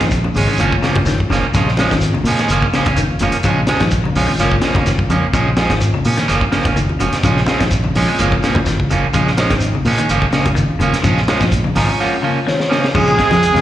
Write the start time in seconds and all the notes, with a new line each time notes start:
0.01 A#1 D#3, kick, snare, closed hi-hat
0.10 kick, closed hi-hat, shekere
0.24 C#3, high conga
0.34 G#1 G#3 C4 C#4 G#4, muted clean electric guitar stroke, open hi-hat, low conga, shekere
0.48 D#3 G#3 C#4
0.57 F#1 F3 G#3 A#3 C#4 F4, closed hi-hat, shekere
0.72 kick
0.82 C#3 F3 A#3 C#4, snare, closed hi-hat, shekere
0.95 F#1, kick, high conga, low conga
1.06 D#3, snare, closed hi-hat, high conga, shekere
1.18 kick, high conga
1.30 F#1 C#3 F3 A#3 C#4, snare, closed hi-hat, low conga, shekere
1.54 A#1 C#3 F3 G#3 C4 C#4 F4, kick, snare, closed hi-hat, shekere
1.68 snare
1.77 F3 G#3 C4 C#4 F4, snare, closed hi-hat, high conga, shekere
1.90 G#1 D#3, kick, snare, closed hi-hat
2.01 closed hi-hat, high conga, shekere
2.14 C#3, high conga
2.24 A#2 F3 G#3, open hi-hat, low conga, shekere
2.28 C#4
2.39 D#3 G#3 C#4, snare, closed hi-hat
2.48 F#1 F3 A#3 C#4, closed hi-hat, shekere
2.62 kick
2.73 C#3 F3 A#3 C#4, muted fingered electric bass stroke, snare, closed hi-hat, shekere
2.86 F#1 A#3 C#4, kick, closed hi-hat, high conga, low conga
2.96 D#3, closed hi-hat, high conga, shekere
3.11 C#4 F4
3.19 F#1 C#3 F3 G#3 A#3 C#4 F4, closed hi-hat, high conga, low conga, shekere
3.32 muted fingered electric bass stroke, closed hi-hat
3.43 A#1 C#3 F3 G#3 C4 C#4 F4, kick, closed hi-hat, shekere
3.67 F3 G#3 C4 C#4 F4, snare, closed hi-hat, high conga, shekere
3.80 A#1 D#3, kick, snare, closed hi-hat
3.91 kick, closed hi-hat, high conga, shekere
4.04 C#3, high conga
4.15 A#1 F3 G#3 C4 C#4 F4, open hi-hat, low conga, shekere
4.27 D#3
4.39 F#1 F3 G#3 A#3 C#4 F4, snare, closed hi-hat, shekere
4.52 kick
4.62 C#3 F3 A#3 C#4, snare, closed hi-hat, shekere
4.74 F#1 A#3 C#4, kick, snare, high conga, low conga
4.86 D#3, snare, closed hi-hat, high conga, shekere
4.99 kick
5.09 F2 C#3 F3 A#3 C#4, closed hi-hat, high conga, low conga, shekere
5.33 A#1 C#3 F3 G#3 C4 C#4 F4, kick, closed hi-hat, shekere
5.57 F3 G#3 C4 C#4 F4, snare, closed hi-hat, high conga, shekere
5.70 G#1 D#3, kick, snare, closed hi-hat
5.81 closed hi-hat, shekere
5.94 C#3, high conga
6.04 A#2 F3 C#4, open hi-hat, low conga, shekere
6.17 D#3 C#4, snare, closed hi-hat
6.28 F#1 F3 A#3 C#4, snare, closed hi-hat, high conga, shekere
6.41 kick
6.52 C#3 F3 A#3 C#4, muted fingered electric bass stroke, snare, closed hi-hat, shekere
6.65 F#1 A#3 C#4, kick, snare, closed hi-hat, high conga, low conga
6.76 D#3, closed hi-hat, high conga, shekere
6.89 C#4 F4, high conga
7.00 F#1 C#3 F3 G#3 A#3 C#4 F#4, muted clean electric guitar stroke, closed hi-hat, high conga, low conga, shekere
7.12 muted fingered electric bass stroke, snare, closed hi-hat
7.23 A#1 C#3 F3 G#3 C4 C#4 F4, kick, snare, closed hi-hat, shekere
7.37 snare
7.46 F3 G#3 C4 C#4 F4, snare, closed hi-hat, high conga, shekere
7.60 A#1 D#3, kick, snare, closed hi-hat
7.71 kick, closed hi-hat, shekere
7.84 C#3, high conga
7.95 A#1 F3 G#3 C4 C#4 F4, snare, open hi-hat, low conga, shekere
8.08 G#3 C#4, muted clean electric guitar stroke
8.19 F#1 F3 G#3 A#3 C#4 F4, closed hi-hat, shekere
8.32 kick
8.42 C#3 F3 A#3 C#4, snare, closed hi-hat, shekere
8.55 F#1, kick, high conga, low conga
8.66 D#3, snare, closed hi-hat, high conga, shekere
8.80 kick, high conga
8.90 F#1 C#3 F3 A#3 C#4, closed hi-hat, high conga, low conga, shekere
9.14 A#1 C#3 F3 G#3 C4 C#4 F4, kick, closed hi-hat, shekere
9.27 snare
9.37 F3 G#3 C4 C#4 D#4, snare, closed hi-hat, high conga, shekere
9.50 G#1 D#3, kick, snare, closed hi-hat
9.60 closed hi-hat, high conga, shekere
9.75 C#3, high conga
9.85 A#2 F3 G#3 C#4, open hi-hat, low conga, shekere
9.98 D#3 G#3 C#4, closed hi-hat
10.09 F#1 F3 A#3 C#4, closed hi-hat, shekere
10.22 kick
10.32 C#3 F3 A#3 C#4, muted fingered electric bass stroke, snare, closed hi-hat, shekere
10.46 F#1, kick, closed hi-hat, high conga
10.55 D#3, closed hi-hat, high conga, shekere
10.69 C#4 F4
10.79 F#1 C#3 F3 G#3 A#3 C#4 F4, closed hi-hat, high conga, low conga, shekere
10.93 muted fingered electric bass stroke, snare, closed hi-hat
11.02 A#1 C#3 F3 G#3 C4 C#4 F4, kick, snare, closed hi-hat, shekere
11.17 snare
11.27 F3 G#3 C4 C#4 F4, snare, closed hi-hat, high conga, shekere
11.40 A#1 A#2, kick, snare, closed hi-hat
11.52 kick, closed hi-hat, high conga, shekere
11.64 C#3, high conga
11.75 G#1 F3 G#3 C4 C#4 F4 A#5, snare, open hi-hat, low conga, shekere
11.89 C#4, muted clean electric guitar stroke
12.00 F#2 F3 G#3 A#3 C#4 F4 F#5
12.22 C#3 F3 A#3 C#4 F5
12.47 D#3 C#5, snare
12.60 snare
12.70 C#3 F3 A#3 C#4, snare
12.84 snare
12.94 A#1 C#3 F3 G#3 C4 C#4 F4 G#4, kick, crash, high conga, low conga
13.07 closed hi-hat
13.17 F3 G#3, kick, snare, closed hi-hat
13.31 F2 F3, snare, closed hi-hat, high conga
13.43 closed hi-hat, high conga
13.54 F2 C#3 G#3 C4 C#4 F4, snare, closed hi-hat, high conga